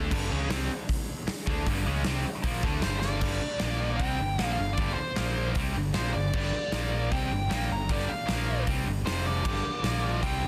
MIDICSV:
0, 0, Header, 1, 8, 480
1, 0, Start_track
1, 0, Key_signature, -2, "minor"
1, 0, Tempo, 389610
1, 132, Time_signature, 4, 2, 24, 8
1, 12910, End_track
2, 0, Start_track
2, 0, Title_t, "Lead electric guitar"
2, 0, Program_c, 0, 29
2, 3481, Note_on_c, 0, 72, 79
2, 3691, Note_off_c, 0, 72, 0
2, 3696, Note_on_c, 0, 74, 82
2, 4881, Note_on_c, 0, 79, 105
2, 4946, Note_off_c, 0, 74, 0
2, 5577, Note_off_c, 0, 79, 0
2, 5582, Note_on_c, 0, 77, 80
2, 5827, Note_on_c, 0, 74, 92
2, 5834, Note_off_c, 0, 77, 0
2, 6079, Note_off_c, 0, 74, 0
2, 6084, Note_on_c, 0, 72, 82
2, 6776, Note_off_c, 0, 72, 0
2, 7324, Note_on_c, 0, 72, 79
2, 7548, Note_off_c, 0, 72, 0
2, 7564, Note_on_c, 0, 74, 89
2, 8780, Note_on_c, 0, 79, 96
2, 8803, Note_off_c, 0, 74, 0
2, 9446, Note_off_c, 0, 79, 0
2, 9514, Note_on_c, 0, 82, 84
2, 9726, Note_off_c, 0, 82, 0
2, 9753, Note_on_c, 0, 74, 95
2, 9965, Note_on_c, 0, 77, 87
2, 9988, Note_off_c, 0, 74, 0
2, 10639, Note_off_c, 0, 77, 0
2, 11158, Note_on_c, 0, 72, 71
2, 11407, Note_off_c, 0, 72, 0
2, 11407, Note_on_c, 0, 74, 82
2, 12600, Note_on_c, 0, 79, 109
2, 12649, Note_off_c, 0, 74, 0
2, 12910, Note_off_c, 0, 79, 0
2, 12910, End_track
3, 0, Start_track
3, 0, Title_t, "Overdriven electric guitar"
3, 0, Program_c, 1, 29
3, 0, Note_on_c, 1, 50, 98
3, 0, Note_on_c, 1, 57, 96
3, 0, Note_on_c, 1, 62, 114
3, 132, Note_off_c, 1, 50, 0
3, 135, Note_off_c, 1, 57, 0
3, 140, Note_off_c, 1, 62, 0
3, 143, Note_on_c, 1, 43, 97
3, 146, Note_on_c, 1, 50, 107
3, 158, Note_on_c, 1, 55, 110
3, 370, Note_off_c, 1, 43, 0
3, 370, Note_off_c, 1, 50, 0
3, 375, Note_on_c, 1, 49, 95
3, 377, Note_off_c, 1, 55, 0
3, 389, Note_on_c, 1, 61, 114
3, 392, Note_on_c, 1, 56, 98
3, 606, Note_off_c, 1, 49, 0
3, 609, Note_off_c, 1, 56, 0
3, 613, Note_off_c, 1, 61, 0
3, 613, Note_on_c, 1, 48, 96
3, 614, Note_on_c, 1, 55, 109
3, 627, Note_on_c, 1, 60, 111
3, 844, Note_off_c, 1, 48, 0
3, 845, Note_off_c, 1, 55, 0
3, 852, Note_off_c, 1, 60, 0
3, 1820, Note_on_c, 1, 50, 100
3, 1825, Note_on_c, 1, 57, 103
3, 1834, Note_on_c, 1, 62, 103
3, 2046, Note_off_c, 1, 50, 0
3, 2049, Note_off_c, 1, 57, 0
3, 2054, Note_off_c, 1, 62, 0
3, 2055, Note_on_c, 1, 43, 95
3, 2063, Note_on_c, 1, 50, 113
3, 2073, Note_on_c, 1, 55, 115
3, 2284, Note_off_c, 1, 43, 0
3, 2285, Note_off_c, 1, 50, 0
3, 2290, Note_on_c, 1, 49, 97
3, 2293, Note_off_c, 1, 55, 0
3, 2302, Note_on_c, 1, 56, 101
3, 2309, Note_on_c, 1, 61, 105
3, 2517, Note_off_c, 1, 49, 0
3, 2522, Note_off_c, 1, 56, 0
3, 2522, Note_on_c, 1, 48, 97
3, 2527, Note_on_c, 1, 55, 94
3, 2529, Note_off_c, 1, 61, 0
3, 2534, Note_on_c, 1, 60, 112
3, 2757, Note_off_c, 1, 48, 0
3, 2759, Note_off_c, 1, 55, 0
3, 2763, Note_off_c, 1, 60, 0
3, 2989, Note_on_c, 1, 46, 108
3, 3000, Note_on_c, 1, 53, 117
3, 3014, Note_on_c, 1, 58, 111
3, 3230, Note_off_c, 1, 46, 0
3, 3235, Note_off_c, 1, 53, 0
3, 3242, Note_off_c, 1, 58, 0
3, 3253, Note_on_c, 1, 50, 97
3, 3255, Note_on_c, 1, 57, 105
3, 3265, Note_on_c, 1, 62, 102
3, 3469, Note_off_c, 1, 50, 0
3, 3480, Note_on_c, 1, 43, 98
3, 3483, Note_off_c, 1, 57, 0
3, 3484, Note_on_c, 1, 50, 98
3, 3488, Note_off_c, 1, 62, 0
3, 3493, Note_on_c, 1, 55, 107
3, 3941, Note_off_c, 1, 43, 0
3, 3944, Note_off_c, 1, 50, 0
3, 3950, Note_off_c, 1, 55, 0
3, 3955, Note_on_c, 1, 43, 87
3, 3959, Note_on_c, 1, 50, 96
3, 3965, Note_on_c, 1, 55, 99
3, 4193, Note_off_c, 1, 43, 0
3, 4194, Note_off_c, 1, 50, 0
3, 4198, Note_off_c, 1, 55, 0
3, 4438, Note_on_c, 1, 46, 86
3, 4444, Note_on_c, 1, 53, 102
3, 4455, Note_on_c, 1, 58, 87
3, 4914, Note_off_c, 1, 46, 0
3, 4917, Note_off_c, 1, 53, 0
3, 4920, Note_on_c, 1, 48, 88
3, 4923, Note_off_c, 1, 58, 0
3, 4926, Note_on_c, 1, 55, 93
3, 4935, Note_on_c, 1, 60, 101
3, 5155, Note_off_c, 1, 48, 0
3, 5158, Note_off_c, 1, 55, 0
3, 5162, Note_off_c, 1, 60, 0
3, 5177, Note_on_c, 1, 43, 63
3, 5179, Note_on_c, 1, 50, 80
3, 5363, Note_off_c, 1, 43, 0
3, 5364, Note_off_c, 1, 50, 0
3, 5398, Note_on_c, 1, 46, 84
3, 5413, Note_on_c, 1, 53, 94
3, 5415, Note_on_c, 1, 58, 101
3, 5634, Note_off_c, 1, 46, 0
3, 5642, Note_off_c, 1, 53, 0
3, 5643, Note_off_c, 1, 58, 0
3, 5649, Note_on_c, 1, 43, 66
3, 5649, Note_on_c, 1, 50, 74
3, 5839, Note_off_c, 1, 43, 0
3, 5839, Note_off_c, 1, 50, 0
3, 5882, Note_on_c, 1, 43, 83
3, 5893, Note_on_c, 1, 50, 89
3, 5904, Note_on_c, 1, 55, 103
3, 6109, Note_off_c, 1, 43, 0
3, 6122, Note_off_c, 1, 50, 0
3, 6127, Note_off_c, 1, 55, 0
3, 6369, Note_on_c, 1, 46, 102
3, 6374, Note_on_c, 1, 53, 91
3, 6385, Note_on_c, 1, 58, 97
3, 6839, Note_off_c, 1, 46, 0
3, 6843, Note_off_c, 1, 53, 0
3, 6844, Note_on_c, 1, 48, 89
3, 6849, Note_off_c, 1, 58, 0
3, 6861, Note_on_c, 1, 55, 96
3, 6872, Note_on_c, 1, 60, 105
3, 7070, Note_on_c, 1, 43, 63
3, 7072, Note_off_c, 1, 48, 0
3, 7077, Note_on_c, 1, 50, 64
3, 7086, Note_off_c, 1, 55, 0
3, 7092, Note_off_c, 1, 60, 0
3, 7270, Note_off_c, 1, 43, 0
3, 7274, Note_off_c, 1, 50, 0
3, 7304, Note_on_c, 1, 46, 93
3, 7321, Note_on_c, 1, 53, 101
3, 7322, Note_on_c, 1, 58, 103
3, 7548, Note_off_c, 1, 46, 0
3, 7557, Note_off_c, 1, 53, 0
3, 7557, Note_off_c, 1, 58, 0
3, 7572, Note_on_c, 1, 43, 62
3, 7577, Note_on_c, 1, 50, 72
3, 7761, Note_off_c, 1, 43, 0
3, 7764, Note_off_c, 1, 50, 0
3, 7804, Note_on_c, 1, 43, 91
3, 7815, Note_on_c, 1, 50, 99
3, 7821, Note_on_c, 1, 55, 106
3, 8025, Note_off_c, 1, 43, 0
3, 8044, Note_off_c, 1, 50, 0
3, 8047, Note_off_c, 1, 55, 0
3, 8280, Note_on_c, 1, 46, 96
3, 8284, Note_on_c, 1, 53, 113
3, 8294, Note_on_c, 1, 58, 114
3, 8742, Note_off_c, 1, 46, 0
3, 8746, Note_on_c, 1, 48, 102
3, 8754, Note_off_c, 1, 53, 0
3, 8757, Note_off_c, 1, 58, 0
3, 8759, Note_on_c, 1, 55, 104
3, 8762, Note_on_c, 1, 60, 113
3, 8990, Note_off_c, 1, 48, 0
3, 8997, Note_off_c, 1, 55, 0
3, 8998, Note_off_c, 1, 60, 0
3, 9000, Note_on_c, 1, 43, 67
3, 9007, Note_on_c, 1, 50, 69
3, 9197, Note_off_c, 1, 43, 0
3, 9200, Note_off_c, 1, 50, 0
3, 9241, Note_on_c, 1, 46, 95
3, 9241, Note_on_c, 1, 53, 88
3, 9252, Note_on_c, 1, 58, 107
3, 9478, Note_off_c, 1, 46, 0
3, 9478, Note_off_c, 1, 53, 0
3, 9483, Note_off_c, 1, 58, 0
3, 9502, Note_on_c, 1, 43, 64
3, 9506, Note_on_c, 1, 50, 68
3, 9688, Note_off_c, 1, 43, 0
3, 9690, Note_off_c, 1, 50, 0
3, 9721, Note_on_c, 1, 43, 94
3, 9728, Note_on_c, 1, 50, 88
3, 9729, Note_on_c, 1, 55, 99
3, 9953, Note_off_c, 1, 43, 0
3, 9962, Note_off_c, 1, 50, 0
3, 9963, Note_off_c, 1, 55, 0
3, 10179, Note_on_c, 1, 46, 82
3, 10188, Note_on_c, 1, 53, 94
3, 10195, Note_on_c, 1, 58, 111
3, 10668, Note_off_c, 1, 46, 0
3, 10673, Note_off_c, 1, 53, 0
3, 10676, Note_off_c, 1, 58, 0
3, 10691, Note_on_c, 1, 48, 96
3, 10693, Note_on_c, 1, 55, 105
3, 10707, Note_on_c, 1, 60, 96
3, 10918, Note_off_c, 1, 48, 0
3, 10922, Note_on_c, 1, 43, 65
3, 10923, Note_on_c, 1, 50, 75
3, 10925, Note_off_c, 1, 55, 0
3, 10932, Note_off_c, 1, 60, 0
3, 11119, Note_off_c, 1, 43, 0
3, 11120, Note_off_c, 1, 50, 0
3, 11165, Note_on_c, 1, 41, 94
3, 11174, Note_on_c, 1, 48, 92
3, 11180, Note_on_c, 1, 53, 91
3, 11631, Note_off_c, 1, 41, 0
3, 11636, Note_on_c, 1, 43, 91
3, 11646, Note_off_c, 1, 48, 0
3, 11649, Note_off_c, 1, 53, 0
3, 11653, Note_on_c, 1, 50, 96
3, 11654, Note_on_c, 1, 55, 97
3, 11878, Note_off_c, 1, 43, 0
3, 11886, Note_off_c, 1, 50, 0
3, 11887, Note_off_c, 1, 55, 0
3, 12129, Note_on_c, 1, 46, 96
3, 12140, Note_on_c, 1, 53, 95
3, 12146, Note_on_c, 1, 58, 99
3, 12605, Note_off_c, 1, 46, 0
3, 12606, Note_off_c, 1, 53, 0
3, 12611, Note_on_c, 1, 55, 99
3, 12612, Note_on_c, 1, 48, 95
3, 12613, Note_off_c, 1, 58, 0
3, 12618, Note_on_c, 1, 60, 112
3, 12845, Note_off_c, 1, 48, 0
3, 12846, Note_off_c, 1, 55, 0
3, 12850, Note_off_c, 1, 60, 0
3, 12850, Note_on_c, 1, 50, 71
3, 12851, Note_on_c, 1, 43, 66
3, 12910, Note_off_c, 1, 43, 0
3, 12910, Note_off_c, 1, 50, 0
3, 12910, End_track
4, 0, Start_track
4, 0, Title_t, "Picked electric bass"
4, 0, Program_c, 2, 34
4, 136, Note_on_c, 2, 31, 101
4, 357, Note_off_c, 2, 31, 0
4, 374, Note_on_c, 2, 37, 100
4, 596, Note_off_c, 2, 37, 0
4, 608, Note_on_c, 2, 36, 98
4, 833, Note_off_c, 2, 36, 0
4, 1813, Note_on_c, 2, 38, 100
4, 2034, Note_off_c, 2, 38, 0
4, 2052, Note_on_c, 2, 31, 89
4, 2273, Note_off_c, 2, 31, 0
4, 2303, Note_on_c, 2, 37, 101
4, 2519, Note_off_c, 2, 37, 0
4, 2535, Note_on_c, 2, 36, 90
4, 2754, Note_off_c, 2, 36, 0
4, 3002, Note_on_c, 2, 34, 92
4, 3226, Note_off_c, 2, 34, 0
4, 3245, Note_on_c, 2, 38, 100
4, 3468, Note_off_c, 2, 38, 0
4, 3483, Note_on_c, 2, 31, 93
4, 3930, Note_off_c, 2, 31, 0
4, 3961, Note_on_c, 2, 31, 85
4, 4186, Note_off_c, 2, 31, 0
4, 4452, Note_on_c, 2, 34, 78
4, 4895, Note_off_c, 2, 34, 0
4, 4922, Note_on_c, 2, 36, 81
4, 5146, Note_off_c, 2, 36, 0
4, 5169, Note_on_c, 2, 31, 71
4, 5390, Note_off_c, 2, 31, 0
4, 5402, Note_on_c, 2, 34, 77
4, 5627, Note_off_c, 2, 34, 0
4, 5651, Note_on_c, 2, 31, 78
4, 5871, Note_off_c, 2, 31, 0
4, 5881, Note_on_c, 2, 31, 82
4, 6106, Note_off_c, 2, 31, 0
4, 6372, Note_on_c, 2, 34, 85
4, 6816, Note_off_c, 2, 34, 0
4, 6846, Note_on_c, 2, 36, 94
4, 7069, Note_off_c, 2, 36, 0
4, 7094, Note_on_c, 2, 31, 76
4, 7314, Note_off_c, 2, 31, 0
4, 7336, Note_on_c, 2, 34, 89
4, 7555, Note_off_c, 2, 34, 0
4, 7574, Note_on_c, 2, 31, 75
4, 7794, Note_off_c, 2, 31, 0
4, 7806, Note_on_c, 2, 31, 88
4, 8030, Note_off_c, 2, 31, 0
4, 8284, Note_on_c, 2, 34, 83
4, 8733, Note_off_c, 2, 34, 0
4, 8770, Note_on_c, 2, 36, 93
4, 8993, Note_off_c, 2, 36, 0
4, 9015, Note_on_c, 2, 31, 75
4, 9235, Note_off_c, 2, 31, 0
4, 9245, Note_on_c, 2, 34, 86
4, 9470, Note_off_c, 2, 34, 0
4, 9489, Note_on_c, 2, 31, 78
4, 9713, Note_off_c, 2, 31, 0
4, 9721, Note_on_c, 2, 31, 89
4, 9949, Note_off_c, 2, 31, 0
4, 10214, Note_on_c, 2, 34, 90
4, 10659, Note_off_c, 2, 34, 0
4, 10687, Note_on_c, 2, 36, 89
4, 10912, Note_off_c, 2, 36, 0
4, 10928, Note_on_c, 2, 31, 83
4, 11153, Note_off_c, 2, 31, 0
4, 11159, Note_on_c, 2, 29, 89
4, 11612, Note_off_c, 2, 29, 0
4, 11649, Note_on_c, 2, 31, 82
4, 11874, Note_off_c, 2, 31, 0
4, 12114, Note_on_c, 2, 34, 88
4, 12570, Note_off_c, 2, 34, 0
4, 12599, Note_on_c, 2, 36, 88
4, 12830, Note_off_c, 2, 36, 0
4, 12845, Note_on_c, 2, 31, 77
4, 12910, Note_off_c, 2, 31, 0
4, 12910, End_track
5, 0, Start_track
5, 0, Title_t, "Muted distorted electric guitar strokes"
5, 1581, Note_on_c, 9, 29, 65
5, 1704, Note_off_c, 9, 29, 0
5, 4214, Note_on_c, 9, 29, 45
5, 4337, Note_off_c, 9, 29, 0
5, 6136, Note_on_c, 9, 29, 54
5, 6260, Note_off_c, 9, 29, 0
5, 8070, Note_on_c, 9, 29, 47
5, 8194, Note_off_c, 9, 29, 0
5, 9978, Note_on_c, 9, 29, 54
5, 10101, Note_off_c, 9, 29, 0
5, 11899, Note_on_c, 9, 29, 51
5, 12022, Note_off_c, 9, 29, 0
5, 12910, End_track
6, 0, Start_track
6, 0, Title_t, "Muted overdriven electric guitar strokes"
6, 1582, Note_on_c, 9, 29, 58
6, 1705, Note_off_c, 9, 29, 0
6, 4217, Note_on_c, 9, 29, 59
6, 4340, Note_off_c, 9, 29, 0
6, 6124, Note_on_c, 9, 29, 61
6, 6247, Note_off_c, 9, 29, 0
6, 8039, Note_on_c, 9, 29, 58
6, 8163, Note_off_c, 9, 29, 0
6, 9968, Note_on_c, 9, 29, 61
6, 10091, Note_off_c, 9, 29, 0
6, 11893, Note_on_c, 9, 29, 59
6, 12016, Note_off_c, 9, 29, 0
6, 12910, End_track
7, 0, Start_track
7, 0, Title_t, "Muted picked electric bass strokes"
7, 1573, Note_on_c, 9, 29, 42
7, 1696, Note_off_c, 9, 29, 0
7, 4209, Note_on_c, 9, 29, 42
7, 4332, Note_off_c, 9, 29, 0
7, 6126, Note_on_c, 9, 29, 43
7, 6249, Note_off_c, 9, 29, 0
7, 8053, Note_on_c, 9, 29, 43
7, 8177, Note_off_c, 9, 29, 0
7, 9966, Note_on_c, 9, 29, 37
7, 10089, Note_off_c, 9, 29, 0
7, 11886, Note_on_c, 9, 29, 44
7, 12010, Note_off_c, 9, 29, 0
7, 12910, End_track
8, 0, Start_track
8, 0, Title_t, "Drums"
8, 140, Note_on_c, 9, 36, 124
8, 145, Note_on_c, 9, 49, 117
8, 263, Note_off_c, 9, 36, 0
8, 268, Note_off_c, 9, 49, 0
8, 621, Note_on_c, 9, 46, 64
8, 622, Note_on_c, 9, 38, 110
8, 744, Note_off_c, 9, 46, 0
8, 745, Note_off_c, 9, 38, 0
8, 1097, Note_on_c, 9, 36, 102
8, 1105, Note_on_c, 9, 46, 62
8, 1221, Note_off_c, 9, 36, 0
8, 1228, Note_off_c, 9, 46, 0
8, 1572, Note_on_c, 9, 46, 69
8, 1574, Note_on_c, 9, 38, 109
8, 1695, Note_off_c, 9, 46, 0
8, 1697, Note_off_c, 9, 38, 0
8, 1813, Note_on_c, 9, 36, 109
8, 1936, Note_off_c, 9, 36, 0
8, 2052, Note_on_c, 9, 36, 116
8, 2061, Note_on_c, 9, 46, 69
8, 2175, Note_off_c, 9, 36, 0
8, 2184, Note_off_c, 9, 46, 0
8, 2519, Note_on_c, 9, 46, 70
8, 2520, Note_on_c, 9, 38, 115
8, 2642, Note_off_c, 9, 46, 0
8, 2643, Note_off_c, 9, 38, 0
8, 3002, Note_on_c, 9, 46, 68
8, 3003, Note_on_c, 9, 36, 112
8, 3125, Note_off_c, 9, 46, 0
8, 3126, Note_off_c, 9, 36, 0
8, 3242, Note_on_c, 9, 36, 102
8, 3365, Note_off_c, 9, 36, 0
8, 3475, Note_on_c, 9, 46, 61
8, 3476, Note_on_c, 9, 38, 109
8, 3598, Note_off_c, 9, 46, 0
8, 3600, Note_off_c, 9, 38, 0
8, 3717, Note_on_c, 9, 38, 75
8, 3840, Note_off_c, 9, 38, 0
8, 3956, Note_on_c, 9, 49, 117
8, 3961, Note_on_c, 9, 36, 104
8, 4080, Note_off_c, 9, 49, 0
8, 4084, Note_off_c, 9, 36, 0
8, 4430, Note_on_c, 9, 46, 51
8, 4432, Note_on_c, 9, 38, 107
8, 4553, Note_off_c, 9, 46, 0
8, 4555, Note_off_c, 9, 38, 0
8, 4923, Note_on_c, 9, 36, 98
8, 4930, Note_on_c, 9, 46, 55
8, 5046, Note_off_c, 9, 36, 0
8, 5053, Note_off_c, 9, 46, 0
8, 5407, Note_on_c, 9, 46, 53
8, 5408, Note_on_c, 9, 38, 104
8, 5530, Note_off_c, 9, 46, 0
8, 5532, Note_off_c, 9, 38, 0
8, 5879, Note_on_c, 9, 46, 55
8, 5885, Note_on_c, 9, 36, 113
8, 6002, Note_off_c, 9, 46, 0
8, 6008, Note_off_c, 9, 36, 0
8, 6361, Note_on_c, 9, 46, 55
8, 6362, Note_on_c, 9, 38, 107
8, 6484, Note_off_c, 9, 46, 0
8, 6485, Note_off_c, 9, 38, 0
8, 6837, Note_on_c, 9, 46, 58
8, 6845, Note_on_c, 9, 36, 99
8, 6960, Note_off_c, 9, 46, 0
8, 6968, Note_off_c, 9, 36, 0
8, 7319, Note_on_c, 9, 46, 55
8, 7320, Note_on_c, 9, 38, 105
8, 7442, Note_off_c, 9, 46, 0
8, 7443, Note_off_c, 9, 38, 0
8, 7803, Note_on_c, 9, 57, 97
8, 7807, Note_on_c, 9, 36, 112
8, 7921, Note_on_c, 9, 38, 30
8, 7926, Note_off_c, 9, 57, 0
8, 7930, Note_off_c, 9, 36, 0
8, 8044, Note_off_c, 9, 38, 0
8, 8282, Note_on_c, 9, 46, 51
8, 8283, Note_on_c, 9, 38, 102
8, 8405, Note_off_c, 9, 46, 0
8, 8407, Note_off_c, 9, 38, 0
8, 8769, Note_on_c, 9, 36, 102
8, 8769, Note_on_c, 9, 46, 53
8, 8892, Note_off_c, 9, 36, 0
8, 8892, Note_off_c, 9, 46, 0
8, 9250, Note_on_c, 9, 46, 54
8, 9251, Note_on_c, 9, 38, 115
8, 9373, Note_off_c, 9, 46, 0
8, 9374, Note_off_c, 9, 38, 0
8, 9725, Note_on_c, 9, 36, 102
8, 9725, Note_on_c, 9, 46, 57
8, 9844, Note_on_c, 9, 38, 30
8, 9848, Note_off_c, 9, 36, 0
8, 9848, Note_off_c, 9, 46, 0
8, 9967, Note_off_c, 9, 38, 0
8, 10207, Note_on_c, 9, 46, 57
8, 10208, Note_on_c, 9, 38, 98
8, 10330, Note_off_c, 9, 46, 0
8, 10332, Note_off_c, 9, 38, 0
8, 10683, Note_on_c, 9, 46, 55
8, 10684, Note_on_c, 9, 36, 99
8, 10806, Note_off_c, 9, 46, 0
8, 10807, Note_off_c, 9, 36, 0
8, 11175, Note_on_c, 9, 46, 60
8, 11176, Note_on_c, 9, 38, 105
8, 11298, Note_off_c, 9, 46, 0
8, 11299, Note_off_c, 9, 38, 0
8, 11644, Note_on_c, 9, 36, 108
8, 11648, Note_on_c, 9, 57, 93
8, 11767, Note_off_c, 9, 36, 0
8, 11771, Note_off_c, 9, 57, 0
8, 11773, Note_on_c, 9, 38, 31
8, 11896, Note_off_c, 9, 38, 0
8, 12123, Note_on_c, 9, 46, 55
8, 12124, Note_on_c, 9, 38, 105
8, 12246, Note_off_c, 9, 46, 0
8, 12247, Note_off_c, 9, 38, 0
8, 12601, Note_on_c, 9, 36, 92
8, 12605, Note_on_c, 9, 46, 53
8, 12724, Note_off_c, 9, 36, 0
8, 12729, Note_off_c, 9, 46, 0
8, 12910, End_track
0, 0, End_of_file